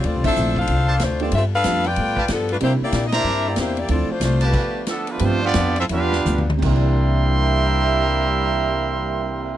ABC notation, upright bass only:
X:1
M:4/4
L:1/8
Q:"Swing" 1/4=184
K:Cmix
V:1 name="Upright bass" clef=bass
(3D,, C,, A,,, B,,,2 C,,2 D,,2 | G,,2 F,,2 A,,2 G,,2 | C, z B,,2 G,,2 E,,2 | D,, z C,,2 z4 |
G,,2 F,,2 E,,2 D,,2 | C,,8- | C,,8 |]